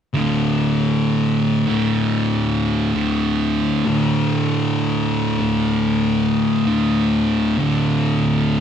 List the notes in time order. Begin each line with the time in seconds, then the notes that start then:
0.14 D2 A2 D3
1.67 D2 A2 D3
2.93 D2 A2 D3
3.86 D2 A2 D3
5.39 D2 A2 D3
6.65 D2 A2 D3
7.58 D2 A2 D3